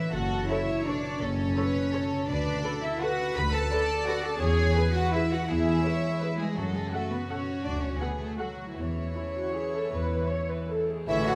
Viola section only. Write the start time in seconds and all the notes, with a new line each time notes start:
0.50 A4 C#5
0.87 A4 C#5
1.57 A4 C#5
1.94 A4 C#5
2.64 A4 B4
3.02 A4 B4
3.72 A4 B4
4.08 A4 B4
4.76 G#4 B4
5.13 G#4 B4
5.85 G#4 B4
6.21 G#4 B4
6.93 A4 F#5
7.30 A4 F#5
8.01 A4 F#5
8.39 A4 F#5
9.15 E4
9.34 F#4
9.54 G#4
9.73 A4
9.91 B4
10.29 C#5
10.50 B4
10.70 A4
10.90 G#4